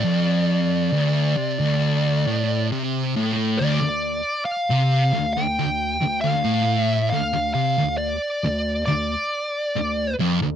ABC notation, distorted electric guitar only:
X:1
M:4/4
L:1/16
Q:1/4=68
K:Dm
V:1 name="Distorted electric guitar" clef=bass
F,,4 D,,2 C, D,,3 A,,2 C,2 A,,2 | D,, D,,2 z2 C,2 D,, D,, D,,2 D,, D,, A,,3 | D,, D,, C, D,,2 z D,,2 D,, z3 D,,2 F,, D,, |]